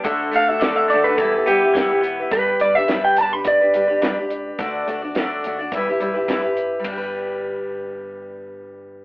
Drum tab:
RD |--------|--------|--------|x-------|
HH |xxxxxxxx|xxxxxxxx|xxxxxxxx|--------|
SD |--o---o-|--o---o-|--o---o-|--------|
BD |o---o-o-|o---o---|o---o-o-|o-------|